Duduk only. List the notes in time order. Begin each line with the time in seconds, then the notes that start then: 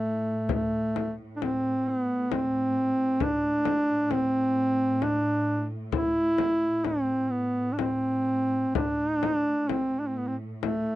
Already playing: A3
0.53 A3
1.36 D4
1.43 C4
1.89 B3
2.32 C4
3.23 D4
4.12 C4
5.04 D4
5.94 E4
6.86 C4
7.31 B3
7.73 D4
7.79 C4
8.76 D4
9.70 C4
9.99 D4
10.07 C4
10.17 B3
10.27 C4
10.63 A3